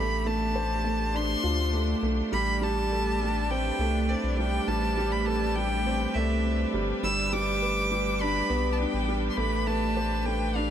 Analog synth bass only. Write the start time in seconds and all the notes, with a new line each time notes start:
Already playing: A1
1.44 D2
2.03 B1
2.33 A1
3.79 C2
4.24 B1
4.68 A1
6.15 C2
6.74 G1
7.03 G1
8.50 B1
8.94 A1
9.37 A1